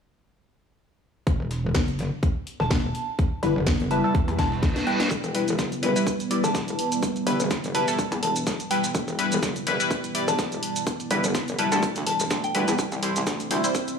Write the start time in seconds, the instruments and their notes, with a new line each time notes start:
1.27 wobble bass E1, kick, closed hi-hat
1.40 wobble bass E1
1.51 snare, closed hi-hat
1.75 wobble bass F#1, kick, snare, closed hi-hat
1.88 closed hi-hat
1.99 snare, closed hi-hat
2.23 kick, closed hi-hat
2.47 closed hi-hat
2.60 wobble bass E1, synth bell A5, snare
2.71 kick, snare, closed hi-hat
2.95 closed hi-hat
3.19 analog synth pad G3 B3 E4 B4, kick, closed hi-hat
3.43 wobble bass G1, synth stab G3 E4 B4, closed hi-hat
3.56 wobble bass F#1
3.67 kick, snare, closed hi-hat
3.80 closed hi-hat
3.91 synth stab G3 E4 B4, synth bell A5, closed hi-hat
4.04 synth stab G3 E4 A4, synth bell A5
4.15 kick, closed hi-hat, reverse cymbal
4.28 wobble bass E2, closed hi-hat
4.39 wobble bass E1, synth bell A5, kick, snare, closed hi-hat
4.52 snare
4.63 kick, snare, closed hi-hat
4.76 snare, closed hi-hat
4.87 synth stab G3 E4 B4, synth bell G5, snare, closed hi-hat
5.00 snare, closed hi-hat
5.11 wobble bass E1, analog synth pad G3 B3 E4 B4, kick, closed hi-hat, shaker
5.24 wobble bass E1, closed hi-hat, shaker
5.35 synth stab G3 E4 B4, snare, closed hi-hat, open hi-hat
5.48 closed hi-hat, shaker
5.59 wobble bass F#1, kick, snare, closed hi-hat, shaker
5.72 closed hi-hat, shaker
5.83 synth stab G3 E4 B4, snare, closed hi-hat, open hi-hat
5.96 synth stab G3 E4 B4, open hi-hat, shaker
6.07 kick, closed hi-hat, shaker
6.20 closed hi-hat, shaker
6.31 synth stab G3 E4 D5, closed hi-hat, open hi-hat
6.44 wobble bass E1, synth bell A5, snare, closed hi-hat, shaker
6.55 kick, snare, closed hi-hat, shaker
6.68 closed hi-hat, shaker
6.79 closed hi-hat, open hi-hat
6.92 closed hi-hat, shaker
7.03 kick, closed hi-hat, shaker
7.16 closed hi-hat, shaker
7.27 wobble bass G1, synth stab G3 E4 B4, closed hi-hat, open hi-hat
7.40 wobble bass F#1, closed hi-hat, shaker
7.51 kick, snare, closed hi-hat, shaker
7.64 closed hi-hat, shaker
7.75 synth stab G3 E4 B4, synth bell A5, closed hi-hat, open hi-hat
7.88 synth stab G3 E4 A4, synth bell A5, open hi-hat, shaker
7.99 kick, closed hi-hat, shaker
8.12 wobble bass E2, closed hi-hat, shaker
8.23 wobble bass E1, synth bell A5, open hi-hat
8.36 closed hi-hat, shaker
8.47 kick, snare, closed hi-hat, shaker
8.60 closed hi-hat, shaker
8.71 synth stab G3 E4 B4, synth bell G5, closed hi-hat, open hi-hat
8.84 snare, closed hi-hat, shaker
8.95 wobble bass E1, kick, closed hi-hat, shaker
9.08 wobble bass E1, closed hi-hat, shaker
9.19 synth stab G3 E4 B4, snare, closed hi-hat, open hi-hat
9.32 closed hi-hat, shaker
9.43 wobble bass F#1, kick, snare, closed hi-hat, shaker
9.56 closed hi-hat, shaker
9.67 synth stab G3 E4 B4, snare, closed hi-hat, open hi-hat
9.80 synth stab G3 E4 B4, open hi-hat, shaker
9.91 kick, closed hi-hat, shaker
10.04 closed hi-hat, shaker
10.15 synth stab G3 E4 D5, closed hi-hat, open hi-hat
10.28 wobble bass E1, synth bell A5, snare, closed hi-hat, shaker
10.39 kick, snare, closed hi-hat, shaker
10.52 closed hi-hat, shaker
10.63 closed hi-hat, open hi-hat
10.76 closed hi-hat, shaker
10.87 kick, closed hi-hat, shaker
11.00 closed hi-hat, shaker
11.11 wobble bass G1, synth stab G3 E4 B4, closed hi-hat, open hi-hat
11.24 wobble bass F#1, closed hi-hat, shaker
11.35 kick, snare, closed hi-hat, shaker
11.48 closed hi-hat, shaker
11.59 synth stab G3 E4 B4, synth bell A5, closed hi-hat, open hi-hat
11.72 wobble bass D2, synth stab G3 E4 A4, synth bell A5, open hi-hat, shaker
11.83 kick, closed hi-hat, shaker
11.96 closed hi-hat, shaker
12.07 wobble bass E1, synth bell A5, closed hi-hat, open hi-hat
12.20 snare, closed hi-hat, shaker
12.31 wobble bass D2, kick, snare, closed hi-hat, shaker
12.44 synth bell G5, closed hi-hat, shaker
12.55 synth stab G3 E4 B4, closed hi-hat, open hi-hat
12.68 wobble bass E2, snare, closed hi-hat, shaker
12.79 wobble bass C2, analog synth pad C4 C5, kick, closed hi-hat, riser, shaker
12.92 wobble bass C2, closed hi-hat, shaker
13.03 synth stab G3 E4 C5, snare, closed hi-hat, open hi-hat
13.16 closed hi-hat, shaker
13.27 wobble bass D2, kick, snare, closed hi-hat, shaker
13.40 closed hi-hat, shaker
13.51 synth stab G3 E4 C5, snare, closed hi-hat, open hi-hat
13.64 synth stab G3 E4 C5, open hi-hat, shaker
13.75 kick, closed hi-hat, shaker
13.88 closed hi-hat, shaker